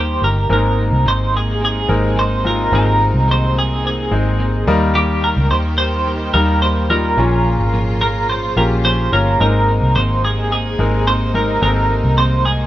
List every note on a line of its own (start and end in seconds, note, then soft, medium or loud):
0.00 0.18 D#2 medium
0.00 0.46 D#3 medium
0.00 0.46 G3 medium
0.00 0.52 G3 medium
0.00 0.22 A#3 medium
0.00 0.46 A#3 medium
0.00 0.52 A#3 medium
0.00 0.23 D#4 medium
0.00 0.50 D#4 medium
0.00 0.22 G4 medium
0.00 0.34 G4 medium
0.00 0.46 G4 medium
0.00 0.52 G4 medium
0.00 0.52 A4 medium
0.00 0.21 A#4 medium
0.00 0.50 A#4 loud
0.00 0.24 C5 medium
0.22 0.48 G1 medium
0.22 0.49 D#4 medium
0.22 0.50 G4 medium
0.22 0.50 A#4 medium
0.22 0.52 A#4 medium
0.49 0.89 G#1 loud
0.49 0.78 G#2 medium
0.49 1.29 G#2 medium
0.49 4.63 C3 medium
0.49 0.78 D#3 loud
0.49 1.49 G#3 medium
0.49 4.63 G#3 medium
0.49 2.70 A#3 medium
0.49 0.78 A#3 medium
0.49 1.49 C4 medium
0.49 0.77 C4 medium
0.49 1.50 D#4 medium
0.49 4.63 D#4 medium
0.49 0.77 D#4 medium
0.49 1.50 A#4 medium
0.49 0.76 A#4 medium
0.49 1.08 A#4 medium
0.77 1.05 A#3 medium
0.77 1.05 C4 soft
0.77 1.05 D#4 medium
0.77 1.05 A#4 medium
0.91 1.05 C2 medium
1.05 1.85 G#1 medium
1.05 1.33 G#2 medium
1.05 1.34 D#3 medium
1.05 1.33 A#3 medium
1.05 1.33 C4 medium
1.05 1.32 D#4 loud
1.05 1.31 A#4 loud
1.05 1.36 C5 loud
1.32 1.59 A#3 soft
1.32 1.60 C4 soft
1.32 1.60 D#4 medium
1.32 1.61 A#4 medium
1.37 1.64 G#4 medium
1.60 1.89 A#3 medium
1.60 1.89 C4 medium
1.60 1.88 D#4 medium
1.60 1.87 A#4 medium
1.65 2.19 G#4 medium
1.88 2.68 G#1 medium
1.88 2.39 G#3 medium
1.88 2.15 A#3 soft
1.88 2.39 C4 medium
1.88 2.16 C4 soft
1.88 2.39 D#4 medium
1.88 2.16 D#4 medium
1.88 2.17 A#4 medium
1.88 2.39 A#4 medium
2.16 2.44 G#2 medium
2.16 2.45 D#3 medium
2.16 2.45 A#3 medium
2.16 2.45 C4 medium
2.16 2.44 D#4 medium
2.16 2.43 A#4 loud
2.16 2.46 C5 medium
2.44 2.70 G#3 medium
2.44 2.72 A#3 soft
2.44 2.70 C4 medium
2.44 2.72 C4 medium
2.44 2.70 D#4 medium
2.44 2.72 D#4 medium
2.44 2.70 F4 medium
2.44 2.72 A#4 medium
2.44 2.74 A#4 medium
2.72 3.11 G#1 loud
2.72 3.00 G#2 medium
2.72 3.52 G#2 medium
2.72 3.00 D#3 medium
2.72 3.72 G#3 medium
2.72 3.01 A#3 medium
2.72 3.72 C4 medium
2.72 4.66 C4 medium
2.72 3.00 C4 medium
2.72 3.72 D#4 medium
2.72 2.99 D#4 medium
2.72 3.72 A#4 medium
2.72 2.98 A#4 loud
2.72 3.31 A#4 medium
3.00 3.27 A#3 soft
3.00 3.27 C4 medium
3.00 3.28 D#4 medium
3.00 3.28 A#4 medium
3.14 4.07 C2 medium
3.28 3.56 G#2 medium
3.28 3.56 D#3 medium
3.28 3.56 A#3 medium
3.28 3.56 C4 medium
3.28 3.55 D#4 loud
3.28 3.54 A#4 loud
3.28 3.58 C5 loud
3.55 3.82 A#3 soft
3.55 3.83 C4 medium
3.55 3.83 D#4 medium
3.55 3.86 G#4 medium
3.55 3.83 A#4 medium
3.83 4.11 A#3 medium
3.83 4.11 C4 medium
3.83 4.10 D#4 medium
3.83 4.09 A#4 medium
3.87 4.65 G#4 medium
4.11 4.63 G#1 loud
4.11 4.61 G#3 medium
4.11 4.38 A#3 soft
4.11 4.61 C4 medium
4.11 4.39 C4 medium
4.11 4.39 D#4 medium
4.11 4.62 D#4 medium
4.11 4.39 A#4 medium
4.11 4.61 C5 medium
4.39 4.67 G#2 medium
4.39 4.67 D#3 medium
4.39 4.67 A#3 medium
4.39 4.67 C4 medium
4.39 4.68 D#4 medium
4.39 4.66 A#4 loud
4.67 5.33 D#2 loud
4.67 5.47 D#3 medium
4.67 7.15 D#3 medium
4.67 5.67 G3 loud
4.67 7.15 G3 medium
4.67 5.67 A#3 medium
4.67 12.67 A#3 medium
4.67 5.67 D#4 medium
4.67 4.94 D#4 soft
4.67 7.15 G4 medium
4.67 4.95 G4 medium
4.67 4.95 A#4 medium
4.67 5.67 A#4 loud
4.95 5.23 D#3 medium
4.95 5.23 A#3 medium
4.95 5.23 D#4 loud
4.95 5.24 G4 medium
4.95 5.23 G4 medium
4.95 5.21 A#4 loud
5.23 5.50 D#4 medium
5.23 5.50 G4 medium
5.23 5.50 A#4 medium
5.37 5.50 C#2 medium
5.50 6.30 D#2 medium
5.50 5.78 D#3 medium
5.50 5.78 A#3 medium
5.50 5.79 D#4 medium
5.50 5.78 G4 loud
5.50 5.77 A#4 medium
5.50 5.58 C5 medium
5.78 6.05 D#4 soft
5.78 6.06 G4 medium
5.78 6.06 A#4 medium
5.78 6.30 C5 loud
6.06 6.34 A#3 medium
6.06 6.34 D#4 medium
6.06 6.34 G4 medium
6.06 6.32 A#4 medium
6.33 7.13 D#2 loud
6.33 6.84 G3 medium
6.33 6.84 A#3 medium
6.33 6.84 D#4 medium
6.33 6.61 D#4 medium
6.33 6.62 G4 medium
6.33 6.61 A#4 medium
6.33 6.62 A#4 medium
6.33 6.84 A#4 medium
6.62 6.90 D#3 medium
6.62 6.90 A#3 medium
6.62 6.90 D#4 loud
6.62 6.90 G4 medium
6.62 6.88 A#4 medium
6.62 6.88 C5 medium
6.89 7.15 G3 medium
6.89 7.15 A#3 medium
6.89 7.15 D#4 medium
6.89 7.18 D#4 medium
6.89 7.15 F4 medium
6.89 7.18 G4 medium
6.89 7.17 A#4 medium
6.89 8.00 A#4 medium
7.17 7.56 A#1 loud
7.17 7.45 A#2 medium
7.17 7.97 A#2 medium
7.17 9.37 C#3 medium
7.17 9.37 F3 medium
7.17 7.45 F3 medium
7.17 8.17 A#3 medium
7.17 7.46 A#3 loud
7.17 8.17 C#4 medium
7.17 7.45 C#4 loud
7.17 9.37 F4 medium
7.17 8.17 F4 medium
7.17 7.45 F4 medium
7.17 7.44 A#4 medium
7.17 8.17 C#5 medium
7.45 7.72 A#3 soft
7.45 7.73 C#4 medium
7.45 7.73 F4 medium
7.45 7.73 A#4 medium
7.59 8.52 G#1 medium
7.73 8.01 A#2 medium
7.73 8.01 F3 medium
7.73 8.01 A#3 medium
7.73 8.01 C#4 medium
7.73 8.00 F4 loud
7.73 7.99 A#4 loud
8.01 8.28 A#3 medium
8.01 8.29 C#4 soft
8.01 8.29 F4 medium
8.01 8.28 A#4 medium
8.01 8.29 A#4 medium
8.29 8.57 A#3 medium
8.29 8.57 C#4 medium
8.29 8.56 F4 medium
8.29 8.55 A#4 medium
8.29 8.57 C5 medium
8.56 9.08 A#1 medium
8.56 9.06 A#3 medium
8.56 8.84 A#3 soft
8.56 9.06 C#4 medium
8.56 8.84 C#4 soft
8.56 9.06 F4 medium
8.56 8.85 F4 medium
8.56 9.06 G4 medium
8.56 8.84 A#4 medium
8.56 8.65 A#4 medium
8.84 9.12 A#2 medium
8.84 9.12 F3 medium
8.84 9.12 A#3 medium
8.84 9.13 C#4 medium
8.84 9.12 F4 medium
8.84 9.11 A#4 medium
8.84 9.13 C5 medium
9.12 9.38 G1 medium
9.12 9.37 A#3 medium
9.12 9.39 A#3 soft
9.12 9.37 C#4 medium
9.12 9.41 C#4 medium
9.12 9.37 F4 medium
9.12 9.40 F4 soft
9.12 9.40 A#4 medium
9.12 9.37 C#5 medium
9.40 9.79 G#1 loud
9.40 9.68 G#2 medium
9.40 10.19 G#2 medium
9.40 12.67 C3 medium
9.40 9.68 D#3 medium
9.40 12.67 G#3 medium
9.40 10.39 G#3 medium
9.40 9.68 A#3 loud
9.40 10.40 C4 medium
9.40 9.68 C4 medium
9.40 12.67 D#4 medium
9.40 10.39 D#4 medium
9.40 9.67 D#4 medium
9.40 10.40 A#4 medium
9.40 9.92 A#4 medium
9.40 9.66 A#4 medium
9.67 9.95 A#3 soft
9.67 9.96 C4 medium
9.67 9.96 D#4 medium
9.67 9.95 A#4 medium
9.82 9.95 C2 medium
9.96 10.75 G#1 loud
9.96 10.23 G#2 medium
9.96 10.24 D#3 loud
9.96 10.24 A#3 medium
9.96 10.24 C4 medium
9.96 10.23 D#4 loud
9.96 10.22 A#4 medium
9.96 10.24 C5 medium
10.24 10.50 A#3 soft
10.24 10.51 C4 soft
10.24 10.52 D#4 medium
10.24 10.51 G#4 medium
10.24 10.51 A#4 medium
10.51 10.79 A#3 medium
10.51 10.79 C4 medium
10.51 10.79 D#4 medium
10.51 11.07 G#4 medium
10.51 10.78 A#4 medium
10.79 11.58 G#1 loud
10.79 11.29 G#3 medium
10.79 11.06 A#3 medium
10.79 11.29 C4 medium
10.79 11.06 C4 medium
10.79 11.29 D#4 medium
10.79 11.07 D#4 medium
10.79 11.07 A#4 medium
10.79 11.29 A#4 medium
11.07 11.34 G#2 medium
11.07 11.35 D#3 medium
11.07 11.35 A#3 medium
11.07 11.34 C4 medium
11.07 11.34 D#4 loud
11.07 11.33 A#4 loud
11.07 11.35 C5 loud
11.34 11.59 G#3 medium
11.34 11.61 A#3 soft
11.34 11.59 C4 medium
11.34 11.62 C4 soft
11.34 11.59 D#4 medium
11.34 11.62 D#4 medium
11.34 11.62 A#4 medium
11.34 11.59 A#4 medium
11.34 11.62 A#4 medium
11.62 12.01 G#1 loud
11.62 11.90 G#2 medium
11.62 12.41 G#2 medium
11.62 11.90 D#3 medium
11.62 12.61 G#3 medium
11.62 11.90 A#3 medium
11.62 12.61 C4 medium
11.62 11.90 C4 medium
11.62 12.61 D#4 medium
11.62 11.89 D#4 loud
11.62 11.69 A4 medium
11.62 12.17 A#4 medium
11.62 11.88 A#4 medium
11.69 12.65 A#4 medium
11.89 12.17 A#3 medium
11.89 12.18 C4 medium
11.89 12.18 D#4 medium
11.89 12.17 A#4 medium
12.04 12.67 C2 medium
12.18 12.45 G#2 medium
12.18 12.46 D#3 medium
12.18 12.46 A#3 medium
12.18 12.46 C4 medium
12.18 12.45 D#4 medium
12.18 12.44 A#4 medium
12.18 12.45 C5 medium
12.45 12.67 A#3 medium
12.45 12.67 C4 medium
12.45 12.67 D#4 medium
12.45 12.67 G#4 medium
12.45 12.67 A#4 medium